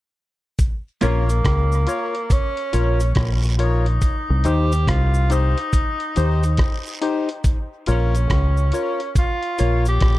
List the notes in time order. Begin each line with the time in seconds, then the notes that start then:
0.59 kick, closed hi-hat, cabasa
1.01 A#1 A#3 C#4 F4 A#4 C#5, closed hi-hat, cabasa
1.29 closed hi-hat, cabasa
1.45 C#2, kick, cross-stick, closed hi-hat
1.72 cabasa
1.87 F4 A#4 C#5, closed hi-hat, cabasa
2.15 closed hi-hat
2.30 C#4, kick, closed hi-hat, cabasa
2.57 closed hi-hat
2.73 A#1 F4 A#4 C#5, closed hi-hat, cabasa
3.00 closed hi-hat, cabasa
3.15 A#1, kick, cross-stick, closed hi-hat, long guiro
3.43 cabasa
3.59 D#4 F4 A#4 C#5, closed hi-hat
3.86 closed hi-hat
4.01 kick, closed hi-hat, cabasa
4.30 C2
4.44 D#2 D#4 G4 C5, closed hi-hat, cabasa
4.72 closed hi-hat, cabasa
4.87 C2 F4, kick, cross-stick, closed hi-hat
5.14 cabasa
5.30 D#4 G4 C5, closed hi-hat, cabasa
5.58 closed hi-hat
5.73 kick, closed hi-hat, cabasa
6.00 closed hi-hat
6.16 D#2 D#4 G4 C5, closed hi-hat, cabasa
6.43 closed hi-hat, cabasa
6.57 kick, cross-stick, closed hi-hat, long guiro
6.86 cabasa
7.01 D#4 G4 C5, closed hi-hat
7.29 closed hi-hat
7.44 kick, closed hi-hat, cabasa
7.86 A#1 F4 A#4 C#5, closed hi-hat, cabasa
7.91 C#4
8.15 closed hi-hat, cabasa
8.30 C#2, kick, cross-stick, closed hi-hat
8.57 cabasa
8.72 F4 A#4 C#5, closed hi-hat, cabasa
9.00 closed hi-hat
9.15 F4, kick, closed hi-hat, cabasa
9.43 closed hi-hat
9.59 A#1 F4 A#4 C#5, closed hi-hat, cabasa
9.85 G4, closed hi-hat, cabasa
10.00 A#1, kick, cross-stick, closed hi-hat, long guiro